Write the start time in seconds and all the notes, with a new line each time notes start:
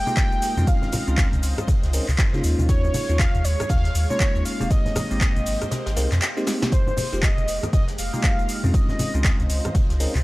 Already playing: G#3 A#3 G4 D#5 G5
0.07 G#3 A#3 D#4 F4 G4, high conga, cabasa
0.17 kick, snare, clap, closed hi-hat, cabasa
0.32 F1, closed hi-hat, cabasa
0.42 closed hi-hat, open hi-hat, cabasa
0.57 F2 G#3 C4 C#4 D#4 F4, high conga, cabasa
0.67 F4 C5 F5, kick, closed hi-hat, cabasa
0.82 snare, low conga, cabasa
0.92 closed hi-hat, open hi-hat, high conga, low conga, cabasa
1.07 C#2 G#3 C4 C#4 D#4 F4, closed hi-hat, cabasa
1.17 kick, snare, clap, closed hi-hat, cabasa
1.32 C#2, closed hi-hat, high conga, cabasa
1.43 C#2, closed hi-hat, open hi-hat, cabasa
1.58 cross-stick, closed hi-hat, low conga, cabasa
1.67 kick, closed hi-hat, high conga, cabasa
1.83 C#2, snare, closed hi-hat, cabasa
1.93 G#3 C4 C#4 D#4 A#4, closed hi-hat, open hi-hat, cabasa
2.09 C#2, clap, high conga, cabasa
2.18 kick, snare, clap, closed hi-hat, cabasa
2.33 C#3 G#3 A#3 C#4 D#4 F4, snare, cabasa
2.44 D#2 G#3 C#5, closed hi-hat, open hi-hat, cabasa
2.59 D#2, high conga, cabasa
2.69 C#5, kick, closed hi-hat, cabasa
2.84 low conga, cabasa
2.94 open hi-hat, high conga, low conga, cabasa
3.09 D#2 G#3 A#3 C#4 D#4 F4, closed hi-hat, cabasa
3.19 F5, kick, snare, clap, closed hi-hat, cabasa
3.35 D#2, closed hi-hat, high conga, cabasa
3.44 D#2 C#5, closed hi-hat, open hi-hat, cabasa
3.60 cross-stick, closed hi-hat, low conga, cabasa
3.69 D#2 F5, kick, closed hi-hat, high conga, cabasa
3.85 snare, closed hi-hat, cabasa
3.95 D#2, closed hi-hat, open hi-hat, cabasa
4.10 G#3 A#3 C#4 D#4 F4 C#5, high conga, cabasa
4.19 kick, snare, clap, closed hi-hat, cabasa
4.35 D#2, closed hi-hat, cabasa
4.45 F5, closed hi-hat, open hi-hat, cabasa
4.60 D#1 G#3 A#3 C4 D#4 G4, high conga, cabasa
4.71 A#3 G4 C5 D#5, kick, closed hi-hat, cabasa
4.86 snare, closed hi-hat, low conga, cabasa
4.96 cross-stick, closed hi-hat, open hi-hat, high conga, low conga, cabasa
5.11 G#1 G#3 A#3 C4 D#4 G4, open hi-hat, cabasa
5.21 kick, snare, clap, closed hi-hat, cabasa
5.36 G#1, closed hi-hat, high conga, cabasa
5.46 G#1, open hi-hat, cabasa
5.61 cross-stick, closed hi-hat, low conga, cabasa
5.71 snare, closed hi-hat, high conga, cabasa
5.86 G#1, snare, closed hi-hat, cabasa
5.96 C2 G#3 A#3 C4 D#4 A#4, snare, closed hi-hat, open hi-hat, cabasa
6.12 F2, snare, clap, closed hi-hat, high conga, cabasa
6.21 snare, clap, closed hi-hat, cabasa
6.37 G#3 A#3 C4 D#4 G4, snare, cabasa
6.47 snare, closed hi-hat, open hi-hat, cabasa
6.62 snare, closed hi-hat, high conga, cabasa
6.72 G#3 C5 D#5, kick, closed hi-hat, cabasa
6.87 low conga, cabasa
6.97 open hi-hat, high conga, low conga, cabasa
7.12 F1 G#3 A#3 D#4 F4 G4, closed hi-hat, cabasa
7.22 D#5, kick, snare, clap, closed hi-hat, cabasa
7.38 F1, closed hi-hat, high conga, cabasa
7.48 F1, closed hi-hat, open hi-hat, cabasa
7.62 cross-stick, closed hi-hat, low conga, cabasa
7.73 F1 D#5, kick, closed hi-hat, high conga, cabasa
7.88 snare, closed hi-hat, cabasa
7.98 F1 F5, closed hi-hat, open hi-hat, cabasa
8.13 G#3 A#3 D#4 F4 G4, high conga, cabasa
8.23 kick, snare, clap, closed hi-hat, cabasa
8.39 F1, closed hi-hat, cabasa
8.49 closed hi-hat, open hi-hat, cabasa
8.63 F2 G#3 C4 C#4 D#4 F4, high conga, cabasa
8.69 F5
8.74 F4 C5 D#5, kick, closed hi-hat, cabasa
8.89 snare, low conga, cabasa
8.99 closed hi-hat, open hi-hat, high conga, low conga, cabasa
9.14 C#2 G#3 C4 C#4 D#4 F4, closed hi-hat, cabasa
9.24 kick, snare, clap, closed hi-hat, cabasa
9.40 C#2, closed hi-hat, high conga, cabasa
9.50 C#2, closed hi-hat, open hi-hat, cabasa
9.65 cross-stick, closed hi-hat, low conga, cabasa
9.75 kick, closed hi-hat, high conga, cabasa
9.90 C#2, snare, closed hi-hat, cabasa
10.00 G#3 C4 C#4 D#4 A#4, closed hi-hat, open hi-hat, cabasa
10.15 C#2, clap, high conga, cabasa